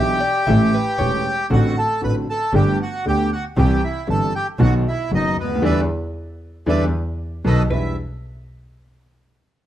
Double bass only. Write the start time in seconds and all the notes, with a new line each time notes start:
Already playing: B1
0.47 A1
0.99 E1
1.51 A1
2.03 A1
2.53 G1
3.06 D2
3.57 C2
4.08 G1
4.59 B1
5.11 F#1
5.36 D2
5.62 E2
6.66 E2
7.45 B1
7.70 E2